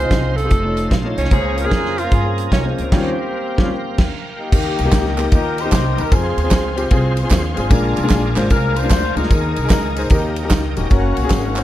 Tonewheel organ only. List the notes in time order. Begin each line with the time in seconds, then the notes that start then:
Already playing: C5 D#5 F5 C6
0.51 A5
1.31 A#4 G#5 A#5
2.93 F5 G5
4.52 A#4 D#5 G5
6.13 G#4 C5 F5 C6
7.70 A#4 D5 G#5
9.30 D#5
10.12 A#4 G5
10.92 C#4 A#4 F#5